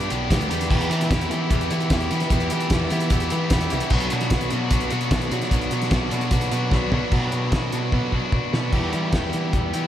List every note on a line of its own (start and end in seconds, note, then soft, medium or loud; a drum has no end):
0.00 0.10 B3 medium
0.00 0.10 D4 medium
0.00 0.11 G4 loud
0.00 closed hi-hat soft
0.10 0.29 B1 medium
0.10 0.30 B3 medium
0.10 0.30 D4 medium
0.10 0.31 G4 medium
0.10 closed hi-hat medium
0.31 0.49 D2 medium
0.31 0.49 B3 medium
0.31 0.49 D4 loud
0.31 0.50 G4 loud
0.31 kick loud
0.31 snare loud
0.31 closed hi-hat loud
0.41 closed hi-hat medium
0.50 0.69 E2 medium
0.50 0.70 B3 medium
0.50 0.69 D4 medium
0.50 0.71 G4 medium
0.50 closed hi-hat medium
0.61 snare soft
0.61 closed hi-hat medium
0.70 0.88 E2 loud
0.70 0.90 E3 loud
0.70 0.91 B3 loud
0.70 0.91 E4 medium
0.70 0.91 G4 loud
0.70 kick loud
0.70 crash loud
0.81 closed hi-hat soft
0.90 1.10 E3 medium
0.90 1.08 E3 medium
0.90 1.10 B3 medium
0.90 1.11 E4 loud
0.90 1.11 G4 medium
0.90 closed hi-hat medium
1.01 snare soft
1.01 closed hi-hat soft
1.11 1.28 E2 loud
1.11 1.30 E3 medium
1.11 1.30 B3 medium
1.11 1.31 E4 medium
1.11 1.31 G4 medium
1.11 kick loud
1.11 snare loud
1.11 closed hi-hat medium
1.21 closed hi-hat medium
1.30 1.48 E3 medium
1.30 1.49 E3 medium
1.30 1.51 B3 medium
1.30 1.50 E4 medium
1.30 1.50 G4 medium
1.30 closed hi-hat medium
1.50 1.69 E2 loud
1.50 1.70 E3 medium
1.50 1.71 B3 medium
1.50 1.71 E4 medium
1.50 1.71 G4 loud
1.50 kick loud
1.50 closed hi-hat loud
1.61 closed hi-hat soft
1.71 1.88 E3 medium
1.71 1.90 E3 medium
1.71 1.91 B3 medium
1.71 1.91 E4 medium
1.71 1.91 G4 medium
1.71 closed hi-hat medium
1.80 closed hi-hat soft
1.90 2.08 E2 medium
1.90 2.10 E3 medium
1.90 2.11 B3 medium
1.90 2.11 E4 loud
1.90 2.11 G4 medium
1.90 kick loud
1.90 snare loud
1.90 closed hi-hat loud
2.01 closed hi-hat soft
2.11 2.30 E3 medium
2.11 2.20 E3 loud
2.11 2.32 B3 loud
2.11 2.31 E4 medium
2.11 2.32 G4 medium
2.11 closed hi-hat medium
2.20 snare soft
2.20 closed hi-hat soft
2.30 2.49 E2 medium
2.30 2.50 E3 medium
2.30 2.51 B3 loud
2.30 2.50 E4 loud
2.30 2.51 G4 loud
2.30 kick loud
2.30 closed hi-hat medium
2.40 closed hi-hat soft
2.50 2.71 E3 medium
2.50 2.69 E3 medium
2.50 2.72 B3 medium
2.50 2.71 E4 loud
2.50 2.72 G4 loud
2.50 closed hi-hat medium
2.60 closed hi-hat soft
2.70 2.88 E2 loud
2.70 2.91 E3 medium
2.70 2.92 B3 medium
2.70 2.91 E4 medium
2.70 2.92 G4 medium
2.70 kick loud
2.70 snare loud
2.70 closed hi-hat loud
2.90 3.09 E3 medium
2.90 3.11 E3 medium
2.90 3.12 B3 medium
2.90 3.11 E4 medium
2.90 3.12 G4 medium
2.90 closed hi-hat medium
3.00 closed hi-hat soft
3.10 3.29 E2 medium
3.10 3.31 E3 medium
3.10 3.32 B3 loud
3.10 3.31 E4 loud
3.10 3.32 G4 loud
3.10 kick loud
3.10 closed hi-hat loud
3.20 closed hi-hat medium
3.30 3.52 E3 medium
3.30 3.49 E3 medium
3.30 3.53 B3 medium
3.30 3.52 E4 medium
3.30 3.52 G4 medium
3.30 closed hi-hat medium
3.50 3.69 E2 medium
3.50 3.71 E3 medium
3.50 3.72 B3 loud
3.50 3.72 E4 loud
3.50 3.72 G4 loud
3.50 kick loud
3.50 snare loud
3.50 closed hi-hat loud
3.61 closed hi-hat medium
3.70 3.81 C2 loud
3.70 3.90 E3 medium
3.70 3.93 B3 loud
3.70 3.91 E4 medium
3.70 3.91 G4 medium
3.70 closed hi-hat medium
3.80 closed hi-hat soft
3.90 4.09 B1 loud
3.90 4.12 F#3 loud
3.90 4.12 B3 loud
3.90 4.13 D4 loud
3.90 4.13 F#4 loud
3.90 kick loud
3.90 crash loud
4.00 closed hi-hat soft
4.10 4.30 B2 medium
4.10 4.32 F#3 medium
4.10 4.33 B3 medium
4.10 4.33 D4 medium
4.10 4.33 F#4 loud
4.10 closed hi-hat medium
4.21 snare soft
4.21 closed hi-hat medium
4.30 4.49 B1 loud
4.30 4.51 F#3 medium
4.30 4.52 B3 medium
4.30 4.52 D4 medium
4.30 4.52 F#4 loud
4.30 kick loud
4.30 snare loud
4.30 closed hi-hat loud
4.41 closed hi-hat medium
4.50 4.70 B2 medium
4.50 4.72 F#3 medium
4.50 4.72 B3 medium
4.50 4.72 D4 medium
4.50 4.73 F#4 medium
4.50 closed hi-hat medium
4.71 4.89 B1 loud
4.71 4.91 F#3 medium
4.71 4.92 B3 loud
4.71 4.92 D4 loud
4.71 4.92 F#4 loud
4.71 kick loud
4.71 closed hi-hat loud
4.81 closed hi-hat soft
4.90 5.10 B2 loud
4.90 5.12 F#3 medium
4.90 5.12 B3 loud
4.90 5.13 D4 medium
4.90 5.13 F#4 loud
4.90 closed hi-hat medium
5.01 closed hi-hat soft
5.11 5.29 B1 loud
5.11 5.31 F#3 medium
5.11 5.32 B3 medium
5.11 5.32 D4 medium
5.11 5.33 F#4 medium
5.11 kick loud
5.11 snare loud
5.11 closed hi-hat loud
5.21 closed hi-hat soft
5.31 5.40 B2 loud
5.31 5.52 F#3 medium
5.31 5.52 B3 medium
5.31 5.53 D4 medium
5.31 5.52 F#4 loud
5.31 closed hi-hat medium
5.41 snare soft
5.41 closed hi-hat soft
5.51 5.69 B1 medium
5.51 5.71 F#3 medium
5.51 5.72 B3 medium
5.51 5.72 D4 loud
5.51 5.73 F#4 loud
5.51 kick loud
5.51 closed hi-hat loud
5.61 closed hi-hat soft
5.71 5.89 B2 medium
5.71 5.91 F#3 medium
5.71 5.91 B3 loud
5.71 5.92 D4 medium
5.71 5.92 F#4 loud
5.71 closed hi-hat medium
5.82 snare soft
5.82 closed hi-hat soft
5.91 6.09 B1 loud
5.91 6.10 F#3 medium
5.91 6.11 B3 medium
5.91 6.11 D4 medium
5.91 6.12 F#4 medium
5.91 kick loud
5.91 snare loud
5.91 closed hi-hat medium
6.11 6.30 B2 medium
6.11 6.30 F#3 medium
6.11 6.31 B3 medium
6.11 6.32 D4 medium
6.11 6.32 F#4 medium
6.11 closed hi-hat medium
6.21 closed hi-hat soft
6.31 6.49 B1 medium
6.31 6.50 F#3 medium
6.31 6.51 B3 loud
6.31 6.51 D4 loud
6.31 6.52 F#4 loud
6.31 kick loud
6.31 closed hi-hat loud
6.41 closed hi-hat soft
6.51 6.70 B2 loud
6.51 6.71 F#3 medium
6.51 6.72 B3 medium
6.51 6.72 D4 loud
6.51 6.73 F#4 loud
6.51 closed hi-hat medium
6.71 6.89 B1 medium
6.71 6.91 F#3 medium
6.71 6.92 B3 loud
6.71 6.92 D4 medium
6.71 6.93 F#4 medium
6.71 kick loud
6.71 snare medium
6.92 7.01 B2 loud
6.92 7.11 F#3 medium
6.92 7.11 B3 medium
6.92 7.12 D4 medium
6.92 7.12 F#4 loud
6.92 floor tom medium
7.12 7.30 B2 medium
7.12 7.52 F#3 medium
7.12 7.52 B3 medium
7.12 7.53 D4 medium
7.12 7.53 F#4 loud
7.12 kick loud
7.12 crash medium
7.32 7.50 B2 medium
7.32 closed hi-hat medium
7.52 7.70 B2 medium
7.52 7.91 F#3 medium
7.52 7.74 B3 medium
7.52 7.73 D4 medium
7.52 7.72 F#4 medium
7.52 kick loud
7.52 snare loud
7.52 closed hi-hat medium
7.72 7.90 B2 medium
7.72 7.93 B3 medium
7.72 7.93 D4 medium
7.72 7.94 F#4 medium
7.72 closed hi-hat medium
7.92 8.10 B2 medium
7.92 8.33 F#3 medium
7.92 8.14 B3 medium
7.92 8.13 D4 medium
7.92 8.12 F#4 medium
7.92 kick loud
8.12 8.21 B2 medium
8.12 8.54 B3 medium
8.12 8.53 D4 medium
8.12 8.52 F#4 medium
8.12 kick medium
8.32 8.41 B2 medium
8.32 kick loud
8.53 8.71 B2 medium
8.53 8.73 B3 medium
8.53 8.72 D4 medium
8.53 8.72 F#4 medium
8.53 snare medium
8.73 8.90 E2 medium
8.73 9.13 G3 medium
8.73 8.95 B3 medium
8.73 8.94 E4 medium
8.73 8.93 G4 medium
8.73 kick medium
8.73 crash medium
8.93 9.11 E3 medium
8.93 9.13 B3 soft
8.93 9.14 E4 medium
8.93 9.15 G4 medium
8.93 closed hi-hat medium
9.12 9.31 E2 medium
9.12 9.87 G3 medium
9.12 9.75 B3 medium
9.12 9.73 E4 medium
9.12 9.73 G4 medium
9.12 kick loud
9.12 snare medium
9.12 closed hi-hat medium
9.33 9.51 E3 medium
9.33 closed hi-hat medium
9.53 9.71 E2 medium
9.53 kick loud
9.53 closed hi-hat medium
9.73 9.87 E3 medium
9.73 9.87 B3 medium
9.73 9.87 E4 medium
9.73 9.87 G4 medium
9.73 closed hi-hat medium